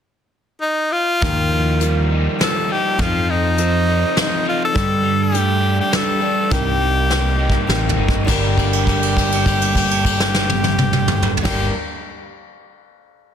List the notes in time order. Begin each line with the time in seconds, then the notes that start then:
0.61 D#4
0.92 F4
1.21 D#2 D#3 F3 A#3 D#4 F4 G4, kick, closed hi-hat
1.52 F3
1.79 F3 G3 A#3 D#4 F4 G4 A#4, closed hi-hat
2.11 D#4
2.39 F3 A#3 D#4 F4 A#4, snare, closed hi-hat
2.43 A4
2.69 D#4 G4
2.98 F2 F3 C4 D#4 F4 A4, kick, closed hi-hat
3.28 F3 D#4
3.57 F3 C4 D#4 F4 A4, closed hi-hat
3.88 D#4
4.16 F3 C4 D#4 F4 A4, snare, closed hi-hat
4.21 D#4
4.45 D#4 F4
4.65 A4
4.74 G2 D3 G3 D4 G4 A4, kick, closed hi-hat
5.03 G3
5.23 G4
5.32 G3 A3 D4 G4 A4, closed hi-hat
5.62 D4
5.80 G4
5.92 G3 D4 G4 A4, snare, closed hi-hat
6.20 G3 D4 G4 A4
6.50 C2 C3 G3 A#3 C4 D#4 G4 A#4, kick, closed hi-hat
6.79 G3
7.10 G3 A#3 C4 D#4 G4 A#4, snare
7.38 D#4
7.50 kick
7.67 A1 G3 A#3 C4 D#4 G4 A#4, snare
7.89 floor tom
7.97 G1 D#4
8.09 kick
8.25 G1 G2 D3 G3 D4 G4 A#4, kick, crash
8.29 A#3 D4 G4 A#4
8.58 kick, crash
8.73 crash
8.87 kick, crash
9.03 crash
9.17 kick, crash
9.32 crash
9.46 kick, crash
9.62 crash
9.75 kick, crash
9.91 crash
10.05 kick, crash
10.20 snare
10.34 snare
10.49 high tom
10.64 high tom
10.78 mid tom
10.93 mid tom
11.08 mid tom
11.22 mid tom
11.37 floor tom
11.41 G1 G2 D3 D4 G4, kick, snare, crash
11.45 G3 A#3 D4 A#4
11.50 G4